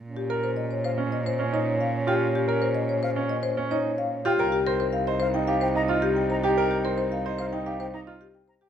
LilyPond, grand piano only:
\new Staff \with { instrumentName = "Grand piano" } { \time 4/4 \key bes \dorian \tempo 4 = 110 r8 bes'16 r4 des'16 r8 des'16 ees'16 r8. f'16 | r8 bes'16 r4 des'16 r8 des'16 ees'16 r8. f'16 | bes'16 r16 c''16 r8 c''16 r16 ees'16 g'16 r16 ees'16 f'16 r8. g'16 | bes'16 r16 c''16 r8 c''16 r16 ees'16 g'16 r16 ees'16 f'16 r8. g'16 | }